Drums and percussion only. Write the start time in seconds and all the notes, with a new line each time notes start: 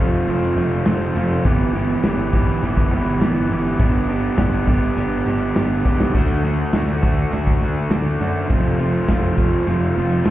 0.27 closed hi-hat
0.42 snare
0.57 closed hi-hat
0.86 snare, clap, closed hi-hat
1.16 closed hi-hat
1.45 kick, closed hi-hat
1.75 closed hi-hat
2.04 snare, clap, closed hi-hat
2.33 kick, closed hi-hat
2.63 closed hi-hat
2.77 kick, snare
2.92 closed hi-hat
3.21 snare, clap, closed hi-hat
3.50 closed hi-hat
3.80 kick, closed hi-hat
4.09 closed hi-hat
4.37 kick, snare, clap, closed hi-hat
4.67 kick, clap, closed hi-hat
4.97 closed hi-hat
5.27 closed hi-hat
5.55 snare, clap, closed hi-hat
5.85 kick
6.00 snare
6.15 kick, crash
6.44 closed hi-hat
6.72 snare, clap, closed hi-hat
7.03 kick, closed hi-hat
7.32 closed hi-hat
7.47 kick
7.61 closed hi-hat
7.91 snare, clap, closed hi-hat
8.21 closed hi-hat
8.50 kick, closed hi-hat
8.79 closed hi-hat
9.08 kick, snare, clap, closed hi-hat
9.38 kick, closed hi-hat
9.67 closed hi-hat
9.97 closed hi-hat
10.26 snare, clap, closed hi-hat